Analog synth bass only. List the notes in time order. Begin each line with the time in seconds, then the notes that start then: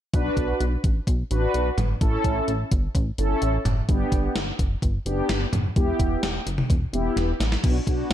0.13 B1
0.37 B1
0.60 B1
0.84 A1
1.07 B1
1.31 A1
1.54 B1
1.78 G1
2.01 A1
2.24 A1
2.48 A1
2.71 G1
2.95 A1
3.18 G1
3.42 A1
3.65 F#1
3.89 G1
4.12 G1
4.35 G1
4.59 F#1
4.82 G1
5.06 F#1
5.29 G1
5.53 F#1
5.76 E1
5.99 E1
6.23 E1
6.46 F#1
6.70 E1
6.93 E1
7.17 E1
7.40 A1
7.64 B1
7.87 B1